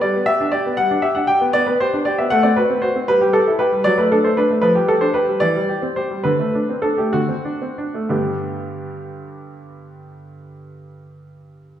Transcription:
\new Staff \with { instrumentName = "Grand piano" } { \time 6/8 \key g \major \tempo 4. = 75 << { d''8 e''8 d''8 fis''8 e''16 fis''16 g''8 | d''16 b'16 c''8 d''16 e''16 fis''16 d''16 b'8 c''8 | b'16 g'16 a'8 b'8 d''16 b'16 a'16 c''16 b'8 | b'16 g'16 a'16 c''16 b'8 d''4 c''8 |
b'4 a'16 g'16 fis'4. | <g, d b d' g'>2.~ | <g, d b d' g'>2. | } \\ { g16 b16 g'16 d'16 g'16 b16 g16 d'16 g'16 d'16 g'16 b16 | b16 b16 g'16 d'16 g'16 b16 a16 c'16 fis'16 c'16 fis'16 c'16 | g16 g16 g'16 e'16 g'16 g16 fis16 a16 d'16 a16 d'16 a16 | f16 g16 g'16 d'16 g'16 g16 e16 g16 g'16 c'16 g'16 g16 |
d16 a16 d'16 c'16 d'16 a16 d16 c'16 d'16 c'16 d'16 a16 | r2. | r2. | } >> }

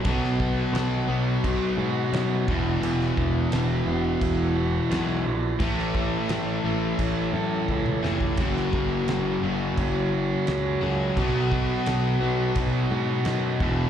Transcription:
<<
  \new Staff \with { instrumentName = "Tonewheel organ" } { \time 4/4 \key b \major \tempo 4 = 86 <dis' fis' b'>2.~ <dis' fis' b'>8 <e' fis' b'>8~ | <e' fis' b'>1 | <e' a' cis''>1 | <fis' ais' cis''>1 |
<fis' b' dis''>2.~ <fis' b' dis''>8 <fis' b' e''>8 | }
  \new Staff \with { instrumentName = "Overdriven electric guitar" } { \time 4/4 \key b \major b,8 b8 fis8 b8 dis'8 fis'8 dis'8 e,8 | e,8 b8 e8 b8 e'8 fis'8 e'8 e8 | a,8 a8 e8 a8 cis'8 a'8 cis'8 e8 | fis,8 ais8 fis8 ais8 cis'8 fis'8 cis'8 fis8 |
b,8 b8 fis8 b8 dis'8 fis'8 dis'8 e,8 | }
  \new Staff \with { instrumentName = "Distorted electric guitar" } { \clef bass \time 4/4 \key b \major <b, fis b>4. <b, fis b>2 <e, b, e>8~ | <e, b, e>4 <e, b, e>2~ <e, b, e>8 r8 | <a, e a>4. <a, e a>2~ <a, e a>8 | <fis, cis fis>4. <fis, cis fis>2~ <fis, cis fis>8 |
<b, fis b>4. <b, fis b>2 <e, b, e>8 | }
  \new Staff \with { instrumentName = "Overdriven electric guitar" } { \clef bass \time 4/4 \key b \major <b, fis b>2.~ <b, fis b>8 <e, b, e>8~ | <e, b, e>2. <e, b, e>8 r8 | <a, e a>2.~ <a, e a>8 <a, e a>8 | <fis, cis fis>2.~ <fis, cis fis>8 <fis, cis fis>8 |
<b, fis b>2.~ <b, fis b>8 <e, b, e>8 | }
  \new Staff \with { instrumentName = "Picked electric bass" } { \clef bass \time 4/4 \key b \major b,,4 b,,8 b,,8 b,,8 gis,8 fis,8 e,,8 | e,,8 e,,8 e,,8 e,,8 e,,4 b,,8 ais,,8 | a,,4 a,,8 a,,8 a,,8 fis,8 cis,8 eis,,8 | fis,,8 fis,,8 fis,,8 fis,,8 fis,,4 cis,8 cis,8 |
b,,4 b,,8 b,,8 b,,8 gis,8 fis,8 e,,8 | }
  \new DrumStaff \with { instrumentName = "Drums" } \drummode { \time 4/4 <cymc bd>16 sn16 bd8 <cymc sn>4 <cymc bd>4 <cymc sn>8 bd8 | cymc16 sn16 bd8 <cymc sn>4 <cymc bd>4 <cymc sn>4 | <cymc bd>16 sn16 bd8 <cymc sn>4 <cymc bd>4 bd16 toml16 sn16 bd16 | <cymc bd>16 sn16 bd8 <cymc sn>4 <cymc bd>4 <cymc sn>4 |
<cymc bd>8 bd8 <cymc sn>4 <cymc bd>4 <cymc sn>8 bd8 | }
>>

